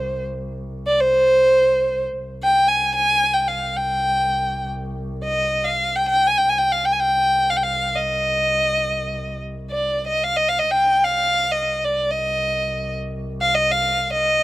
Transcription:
Already playing: double bass C2, violin C5
0.87 violin D5
1.01 violin C5
2.17 double bass C2
2.43 violin G5
2.69 violin G#5
2.95 violin G#5
3.34 violin G5
3.48 violin F5
3.77 violin G5
5.24 violin D#5
5.64 violin F5
5.96 violin G5
6.09 violin G5
6.27 violin G#5
6.38 violin G5
6.45 double bass C2, violin G#5
6.58 violin G5
6.73 violin F5
6.85 violin G5
6.93 violin G#5
7.00 violin G5
7.50 violin F5
7.57 violin G5
7.63 violin F5
7.95 violin D#5
9.71 violin D5
10.07 violin D#5
10.24 violin F5
10.37 violin D#5
10.49 violin F5
10.59 violin D#5
10.71 double bass C2, violin G5
11.04 violin F5
11.52 violin D#5
11.85 violin D5
12.11 violin D#5
13.41 violin F5
13.55 violin D#5
13.71 violin F5
14.13 violin D#5

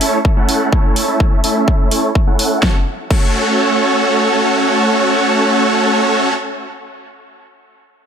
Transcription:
0.01 supersaw synth A3 C#4 E4 A4 C#5, open hi-hat
0.25 kick
0.37 supersaw synth A3 C#4 E4 A4 F#5
0.49 open hi-hat
0.73 supersaw synth A3 C#4 E4 A4 C#5, kick
0.96 open hi-hat
1.08 supersaw synth A3 C#4 E4 A4 E5
1.20 kick
1.44 supersaw synth A3 C#4 E4 A4 E5, open hi-hat
1.68 kick
1.91 supersaw synth A3 C#4 E4 A4 C#5, open hi-hat
2.15 kick
2.27 supersaw synth A3 C#4 E4 A4 F#5
2.39 open hi-hat
2.63 supersaw synth A3 C#4 F#4 A4 C#5, kick, snare
3.11 supersaw synth A3 C#4 F#4 A4 C#5, kick, crash

